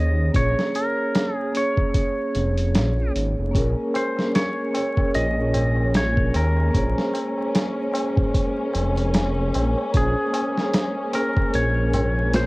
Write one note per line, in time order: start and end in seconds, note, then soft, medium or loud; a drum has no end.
0.00 0.30 D#2 loud
0.00 0.28 A#3 medium
0.00 0.29 C#4 medium
0.00 0.30 G#4 medium
0.00 0.31 C#5 medium
0.00 0.31 D#5 loud
0.32 0.55 A#1 loud
0.32 1.49 A#3 medium
0.32 1.50 C#4 medium
0.32 1.51 G#4 medium
0.32 0.76 C#5 loud
0.32 kick loud
0.32 closed hi-hat medium
0.38 1.52 C#5 medium
0.59 snare soft
0.75 1.35 A#4 medium
0.75 closed hi-hat medium
1.15 snare loud
1.15 closed hi-hat medium
1.35 1.57 G#4 medium
1.52 3.49 A#3 medium
1.52 3.50 C#4 medium
1.52 closed hi-hat medium
1.56 3.51 G#4 medium
1.56 3.12 C#5 medium
1.56 3.52 C#5 medium
1.77 kick medium
1.94 kick loud
1.94 closed hi-hat medium
2.35 2.77 F1 loud
2.35 closed hi-hat medium
2.57 closed hi-hat soft
2.74 3.11 A#1 medium
2.74 snare loud
2.74 closed hi-hat medium
3.15 3.35 G#1 loud
3.15 closed hi-hat medium
3.39 3.53 F1 medium
3.51 12.46 G#3 medium
3.51 4.69 A#3 medium
3.51 12.46 A#3 medium
3.51 4.70 C#4 medium
3.51 12.46 C#4 medium
3.51 4.71 G#4 medium
3.51 kick loud
3.51 tabla na soft
3.55 3.75 A#1 loud
3.55 4.72 A#4 medium
3.55 closed hi-hat medium
3.94 4.35 C5 medium
3.94 closed hi-hat medium
3.94 tabla na medium
4.17 snare soft
4.17 tabla na soft
4.35 5.11 C#5 loud
4.35 snare loud
4.35 closed hi-hat medium
4.35 tabla na soft
4.71 6.68 A#3 medium
4.71 6.70 C#4 medium
4.71 tabla na medium
4.75 6.70 G#4 medium
4.75 6.71 C#5 medium
4.75 closed hi-hat medium
4.97 kick loud
4.97 tabla na medium
5.15 6.32 A#1 medium
5.15 5.96 D#5 loud
5.15 closed hi-hat medium
5.15 tabla na soft
5.54 closed hi-hat medium
5.54 tabla na loud
5.54 tabla ge medium
5.76 tabla na medium
5.92 snare loud
5.92 closed hi-hat medium
5.92 tabla na soft
5.97 6.37 C#5 loud
6.17 kick loud
6.34 6.70 D#2 medium
6.34 8.71 A#4 medium
6.34 closed hi-hat medium
6.34 tabla na medium
6.56 tabla na medium
6.71 7.88 A#3 medium
6.71 7.90 C#4 medium
6.71 kick loud
6.75 6.95 A#1 medium
6.75 7.91 G#4 medium
6.75 7.92 C5 medium
6.75 closed hi-hat medium
6.75 tabla na soft
6.98 snare soft
7.14 closed hi-hat medium
7.14 tabla na medium
7.38 tabla na soft
7.54 snare loud
7.54 closed hi-hat medium
7.54 tabla na soft
7.91 9.89 A#3 medium
7.91 9.90 C#4 medium
7.91 closed hi-hat medium
7.91 tabla na loud
7.96 9.91 G#4 medium
7.96 9.92 C5 medium
8.16 kick medium
8.16 tabla na soft
8.16 tabla ge medium
8.34 kick loud
8.34 closed hi-hat medium
8.34 tabla na soft
8.73 9.51 F1 loud
8.73 closed hi-hat medium
8.73 tabla na loud
8.97 closed hi-hat soft
8.97 tabla na soft
9.14 snare loud
9.14 closed hi-hat medium
9.14 tabla na soft
9.54 9.75 A#1 medium
9.54 closed hi-hat medium
9.54 tabla na medium
9.77 tabla na medium
9.92 10.14 A#1 loud
9.92 11.09 A#3 medium
9.92 11.10 C#4 medium
9.92 kick loud
9.92 closed hi-hat medium
9.92 tabla na soft
9.96 11.11 G#4 medium
9.96 11.15 G#4 loud
9.96 11.12 C5 medium
10.33 closed hi-hat medium
10.33 tabla na medium
10.58 snare soft
10.58 tabla na soft
10.74 snare loud
10.74 closed hi-hat medium
10.74 tabla na soft
11.12 12.46 A#3 medium
11.12 12.46 C#4 medium
11.12 11.56 A#4 medium
11.12 closed hi-hat medium
11.12 tabla na medium
11.16 12.46 G#4 medium
11.16 12.46 A#4 medium
11.37 kick loud
11.37 tabla na soft
11.54 12.46 A#1 medium
11.54 12.35 C#5 loud
11.54 closed hi-hat medium
11.54 tabla na soft
11.94 closed hi-hat medium
11.94 tabla na loud
11.94 tabla ge medium
12.16 tabla na medium
12.33 12.46 C5 loud
12.33 snare loud
12.33 closed hi-hat medium
12.33 tabla na soft